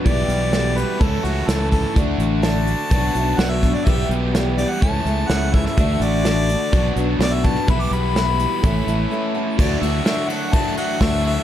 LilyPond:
<<
  \new Staff \with { instrumentName = "Harmonica" } { \time 4/4 \key d \major \tempo 4 = 126 d''4. b'8 a'8 fis'8 a'8 a'8 | r4 a''2 fis''16 e''8 d''16 | e''8 r4 d''16 fis''16 a''4 fis''8 e''16 e''16~ | e''8 d''2 r8 d''16 e''16 a''8 |
b''16 d'''16 b''2. r8 | d''8 e''4 fis''8 a''8 fis''8 e''8 e''8 | }
  \new Staff \with { instrumentName = "Upright piano" } { \time 4/4 \key d \major <e' g' b'>8 r8 <e' g' a'>8 r8 <e' a' cis''>8 <e' a' cis''>8 <e' a' cis''>8 r8 | <e' fis' d''>8 r8 <e' fis' d''>8 r8 <fis' b' d''>8 <fis' b' e''>8 <fis' b' d''>8 r8 | <g' b' e''>8 r8 <g' b' d''>8 r8 <a' cis'' e''>8 <a' cis'' e''>8 <a' cis'' e''>8 r8 | <fis' d'' e''>8 r8 <fis' d'' e''>8 r8 <fis' b' d''>8 <fis' b' d''>8 <fis' b' d''>8 r8 |
<g' b' e''>8 r8 <g' b' e''>8 r8 <a' cis'' e''>8 <a' cis'' e'' a''>8 <a' cis'' e''>8 fis''8 | <fis' d'' e''>8 r8 <fis' d'' e''>8 r8 <fis' d'' e''>8 r8 <fis' d'' e''>8 r8 | }
  \new Staff \with { instrumentName = "Steel-string acoustic guitar" } { \time 4/4 \key d \major <b, e b e' g'>4. <b e' g'>8 <e a cis' a'>8 <a cis' a'>8 <e cis' a'>8 <a cis' a'>8 | <d e a d' fis'>4. <a d' fis'>8 <fis b d' fis'>8 <b d' fis'>8 <fis b d' fis'>8 <b d' fis'>8 | <b, e b e' g'>4. <b e' g'>8 <e a cis' a'>8 <a cis' a'>8 <e a cis' a'>8 <a cis' a'>8 | <d e a d' fis'>4. <a d' fis'>8 <fis b d' fis'>8 <b d' fis'>8 <fis b d' fis'>8 <b d' fis'>8 |
<b, e b e' g'>4. <b e' g'>8 <a cis' e' a'>8 <a cis' e' a'>8 <a cis' e' a'>8 <a cis' e' a'>8 | <d e a e' fis'>8 <a e' fis'>8 <e a e' fis'>4 <d e a e' fis'>4 <e a e' fis'>4 | }
  \new Staff \with { instrumentName = "Overdriven electric guitar" } { \time 4/4 \key d \major <b, e g b g'>2 <cis e a cis' e'>2 | <d a d' fis'>2 <b, fis b d' fis'>2 | <b, e g b g'>2 <cis e a cis' e'>2 | <d a d' fis'>2 <b, fis b d' fis'>2 |
<b, e g b e'>2 <a, e a cis' e'>2 | <d fis a d' fis'>8 <a d' fis'>8 <d fis a d' fis'>8 <a d' fis'>8 <fis a d' fis'>8 <a d' fis'>8 <d fis a d' fis'>8 <a d' fis'>8 | }
  \new Staff \with { instrumentName = "Fingered electric bass" } { \clef bass \time 4/4 \key d \major b,,8 b,,4. cis,8 cis,8 cis,4 | d,8 a,,4. b,,8 b,,8 b,,4 | b,,8 b,,4. cis,8 cis,8 cis,4 | d,8 a,,4. b,,8 b,,8 b,,4 |
b,,8 b,,4. a,,8 a,,8 r4 | d,8 d,8 r2 d,4 | }
  \new DrumStaff \with { instrumentName = "Drums" } \drummode { \time 4/4 <hh bd>8 hh8 <hh sn>8 hh8 <hh bd>8 hh8 <hh sn>8 <hh bd>8 | <hh bd>8 hh8 <hh sn>8 hh8 <hh bd>8 hh8 <hh sn>8 <hh bd>8 | <hh bd>8 hh8 <hh sn>8 hh8 <hh bd>8 hh8 <hh sn>8 <hh bd>16 sn16 | <hh bd>8 hh8 <hh sn>8 hh8 <hh bd>8 hh8 <hh sn>8 <hh bd>16 sn16 |
<hh bd>8 hh8 <hh sn>8 hh8 <hh bd>8 hh8 r4 | <cymc bd>8 cymr8 <cymr sn>8 cymr8 <bd cymr>8 cymr8 <bd cymr sn>16 sn16 cymr8 | }
>>